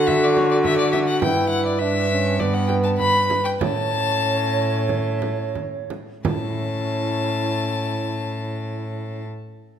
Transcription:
Already playing: D3 F#4 A4
0.07 E5, frame drum
0.24 D5
0.37 C#5, frame drum
0.51 D5
0.64 E5, frame drum
0.79 D5
0.92 E5, frame drum
1.08 F#5
1.22 G2 E4 B4 G5, frame drum
1.50 F#5
1.66 D5
1.79 D4 E5
2.11 C#4
2.39 B3 B4 D5, frame drum
2.54 F#5
2.68 G5, frame drum
2.83 A5
2.97 B4 B5, frame drum
3.30 frame drum
3.45 G5
3.60 A2 C#4 C#5 A5, frame drum
4.89 frame drum
5.22 frame drum
5.55 frame drum
5.90 frame drum
6.25 A2 C#4 E4 A5, frame drum

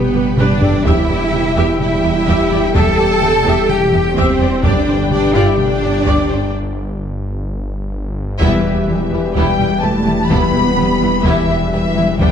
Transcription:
Already playing: G1 G3 B3 G4 B4 G5
0.14 G2 G4 B4, taiko low-mid
0.38 G2 D4 G4 B4 D5, taiko low-mid
0.62 G2 G4 A4, taiko low
0.85 E1 E2 E3 G3 E4 G4 E5 G5, taiko
1.09 E2 G4 D5
1.33 E2 G4 E5, taiko low-mid
1.56 E2 G4 E5
1.80 E4 E5, taiko low-mid
2.04 E2 G4 E5
2.27 E2 G4 E5, taiko
2.51 E2 G4 D5
2.74 E2 G4 A4 E5 A5, taiko
2.99 E2 G4 D5
3.22 E2 G4 E5, taiko low-mid
3.46 E2 G4 E5
3.69 G4 G5, taiko low-mid
3.93 E2 G4 E5
4.15 E2 C4 G4 C5 E5, taiko
4.40 E2 G4 D5
4.63 G1 G2 D3 G3 D4 G4 B4 D5 G5, taiko
4.87 G2 G4 C5
5.10 G2 D4 G4 D5, taiko low-mid
5.34 G2 F4 G4 D5 F5
5.46 E4 E5
5.58 D4 D5, taiko low-mid
5.81 G2 G4 D5
6.05 G2 G4 D5, taiko
6.29 G2 G4 C5
8.41 E1 E3 G3 B3 E4 G4 B4 E5, taiko
8.65 E1 G3 E4 G4
8.88 E1 G3 E4 G4 B4, taiko mid
9.12 E1 G3 E4 G4
9.35 E1 G3 B3 E4 G5, taiko
9.59 E1 G3 E4 G4
9.82 E1 G3 A3 E4 G4 B4 A5
10.06 E1 G3 E4 G4, taiko mid
10.30 E1 G3 B3 E4 B5, taiko
10.53 E1 G3 E4 G4
10.77 E1 G3 E4 G4 B4, taiko mid
11.01 E1 G3 E4 G4
11.24 E1 E3 G3 B3 E4 E5, taiko
11.48 E1 G3 E4 G4
11.72 E1 E3 G3 E4 G4 B4 E5
11.95 E1 G3 E4 G4, taiko mid
12.19 G1 D3 G3 B3 D4 G4 D5 G5, taiko

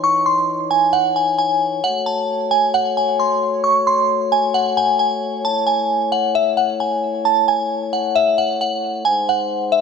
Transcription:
Already playing: E3 D#4 C#5
0.04 C#6
0.26 C6
0.71 G#5
0.93 F#5
1.16 G#5
1.38 G#5
1.84 A3 F#4 F#5
2.06 A5
2.51 G#5
2.74 F#5
2.97 G#5
3.20 C6
3.64 C#6
3.87 C6
4.32 G#5
4.54 F#5
4.77 G#5
4.99 G#5
5.45 E4 A5
5.67 G#5
6.12 F#5
6.35 E5
6.57 F#5
6.80 G#5
7.25 A5
7.48 G#5
7.93 F#5
8.15 E5
8.38 F#5
8.61 F#5
9.05 G#3 D#4 C5 G#5
9.29 F#5
9.72 E5

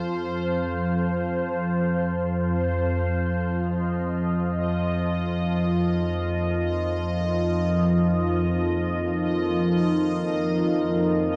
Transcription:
Already playing: F2 F3 F4 C5 F5
3.55 F3 D#5
4.89 D#4
5.32 A#4
8.51 F5

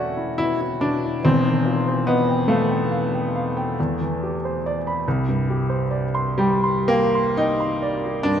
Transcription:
Already playing: E1 E2 A3 C#4 F#4 D5 E5 G5
0.17 E4
0.38 B2 E4
0.61 E4
0.81 B2 D4
1.04 E4
1.24 E1 E2 C4
1.45 D#3
1.66 F4
1.88 C5
2.07 B3 D#5
2.29 G5
2.48 A3 F5
2.69 G5
2.91 F5
3.13 G5
3.35 F5
3.57 G5
3.80 E2
4.01 E3
4.23 G4
4.45 C5
4.66 D5
4.87 B5
5.08 C2
5.28 G2
5.50 G4
5.70 C5
5.91 D5
6.14 C6
6.38 G3 G5
6.63 C6
6.88 A#3 G5
7.15 C6
7.37 D#4 G5
7.60 C6
7.82 D5
8.05 G4
8.23 G2 D4

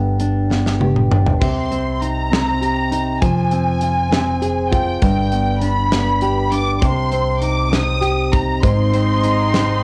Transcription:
Already playing: G1 G2 B3
0.20 D4, closed hi-hat
0.50 B3, snare
0.66 snare
0.80 G4, high tom
0.96 mid tom
1.11 D4, mid tom
1.26 floor tom
1.41 C2 C3 C6, kick, splash
1.71 C4, closed hi-hat
1.95 C6
2.01 D#4 A#5, closed hi-hat
2.32 C4, snare, closed hi-hat
2.61 G4, closed hi-hat
2.92 D#4, closed hi-hat
3.22 F1 F3 G#5, kick, closed hi-hat
3.52 C4, closed hi-hat
3.81 F4, closed hi-hat
4.11 C4, snare, closed hi-hat
4.42 G#4, closed hi-hat
4.71 F4 G5, kick, closed hi-hat
5.02 G1 G2 G5, kick, closed hi-hat
5.32 B3, closed hi-hat
5.62 D4 B5, closed hi-hat
5.92 B3, snare, closed hi-hat
6.21 G4, closed hi-hat
6.52 D4 D6, closed hi-hat
6.76 D6
6.82 C2 C3 C6, kick, closed hi-hat
7.12 C4, closed hi-hat
7.41 D#4 D6, closed hi-hat
7.71 C4 D#6, snare, closed hi-hat
8.01 G4, closed hi-hat
8.32 D#4 A#5, kick, closed hi-hat
8.62 G#1 G#2 G#3 C4 D#4 C6, kick, closed hi-hat
8.93 C4, closed hi-hat
9.23 D#4, closed hi-hat
9.54 C4, snare, closed hi-hat

